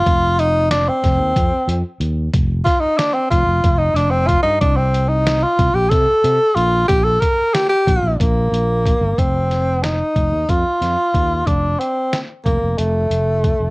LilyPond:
<<
  \new Staff \with { instrumentName = "Tenor saxophone" } { \time 7/8 \key f \mixolydian \tempo 4 = 92 f'8 ees'8 d'16 c'4. r8. | r8 f'16 ees'16 d'16 c'16 f'8. ees'16 d'16 c'16 f'16 ees'16 | d'16 c'8 ees'8 f'8 g'16 a'4 f'8 | g'16 a'16 bes'8 g'16 g'8. bes4. |
c'4 ees'4 f'4. | d'8 c'8 r8 bes8 a4. | }
  \new Staff \with { instrumentName = "Fretless electric bass" } { \clef bass \time 7/8 \key f \mixolydian f,,4. f,,16 ees,16 f,16 r16 f,16 r16 ees,8 | f,,8 r4 f,,16 f,,16 f,,8 f,,8. g,16 | c,4. c,16 bes,,16 c16 r16 c16 r16 bes,,8 | bes,,8 r4 bes,,16 bes,,16 bes,,8 bes,,8. g,,16 |
f,,4. f,,16 ees,16 f,16 r16 f,16 r16 ees,8 | f,,8 r4 f,,16 f,,16 f,,8 f,,8. f,,16 | }
  \new DrumStaff \with { instrumentName = "Drums" } \drummode { \time 7/8 <hh bd>8 hh8 <hh sn>8 <hh bd sn>8 <hh bd>8 hh8 hh8 | <hh bd>8 <hh bd sn>8 <hh sn>8 <hh bd>8 <hh bd>8 <hh sn>8 <hh bd>8 | <hh bd>8 hh8 <hh sn>8 <hh bd>8 <hh bd sn>8 hh8 hh8 | <hh bd>8 <hh bd>8 <hh sn>8 <hh bd>8 <hh bd>8 hh8 <hh bd>8 |
<hh bd>8 <hh sn>8 <hh sn>8 <hh bd>8 <hh bd>8 <hh sn>8 <hh bd>8 | <hh bd>8 hh8 <hh sn>8 <hh bd>8 hh8 hh8 <hh bd>8 | }
>>